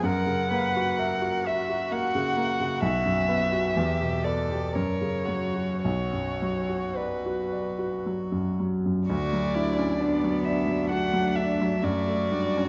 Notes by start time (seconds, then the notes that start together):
0.03 F#2 A#4 F#5
0.27 C#3
0.51 A#3 B4
0.76 F#4
0.99 A#4 E5
1.22 F#4
1.46 F#4 E5
1.70 F#4
1.91 A#3 F#5
2.15 C#3
2.37 A#3
2.60 C#3
2.82 B1 E5
3.06 F#2
3.29 B3
3.52 F#4
3.75 E2 G4
4.01 B2
4.24 B3 A4 D5
4.51 G4
4.73 F#2 A#4 C#5
5.01 C#3
5.25 F#3 F#4
5.56 F#4
5.82 B1 F#4 C#5
6.13 F#2
6.42 F#3
6.69 F#4
6.97 B4 D5
7.26 F#4
7.53 D5
7.79 F#4
8.06 F#3
8.32 F#2
8.60 F#3
8.86 F#2
9.08 D2 A3 F#4 D5
9.33 F#3
9.55 D4 E4
9.78 C#4
9.99 B3 D4
10.24 F#3
10.45 D4 D5 E5
10.67 F#3
10.90 A3 F#4 F#5
11.13 F#3
11.35 D4 E5
11.61 F#3
11.82 F#2 A3 F#4 D5
12.07 A3
12.31 G3 D4
12.57 C#4